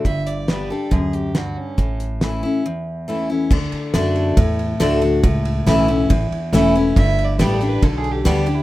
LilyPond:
<<
  \new Staff \with { instrumentName = "Fiddle" } { \time 4/4 \key d \major \tempo 4 = 139 e''8 d''8 b'8 a'8 gis'8 g'8 fis'8 cis'8~ | cis'8 r2. r8 | r1 | r1 |
\tuplet 3/2 { e''4 d''8 b'8 a'8 b'8 a'8 gis'8 g'8 fis'8 g'8 e'8 } | }
  \new Staff \with { instrumentName = "Steel-string acoustic guitar" } { \time 4/4 \key d \major << { r4 <g b d' g'>8 <d' g'>8 r2 | r4 <e a cis' e'>8 <cis' e'>8 r4 <e a cis' e'>8 <cis' e'>8 | r4 <d a d' fis'>4 r4 <d a d' fis'>8 <d' fis'>8 | r4 <e a cis' e'>8 <cis' e'>8 r4 <e a cis' e'>8 <cis' e'>8 |
r4 <g b d' g'>8 <d' g'>8 r4 <g b d' g'>8 <d' g'>8 | } \\ { g,2 fis,4 g,4 | a,2 e,2 | d2 a,2 | a,2 e,2 |
g,2 d2 | } >> }
  \new Staff \with { instrumentName = "Upright bass" } { \clef bass \time 4/4 \key d \major g,,2 d,2 | a,,2 r2 | d,8 r8 fis,4 e,4 d,4 | cis,4 b,,4 a,,8 r8 e,,4 |
g,,4 a,,4 b,,4 d,4 | }
  \new DrumStaff \with { instrumentName = "Drums" } \drummode { \time 4/4 <hh bd>8 hh8 <hh sn>4 <hh bd>8 hh8 <hh sn>4 | <hh bd>8 hh8 <hh sn>4 r4 r4 | <cymc bd>8 cymr8 <cymr sn>8 cymr8 <bd cymr>8 cymr8 <cymr sn>8 cymr8 | <bd cymr>8 cymr8 <cymr sn>8 cymr8 <bd cymr>8 cymr8 <cymr sn>8 cymr8 |
<bd cymr>8 cymr8 <cymr sn>8 cymr8 <bd cymr>8 cymr8 <cymr sn>8 cymr8 | }
>>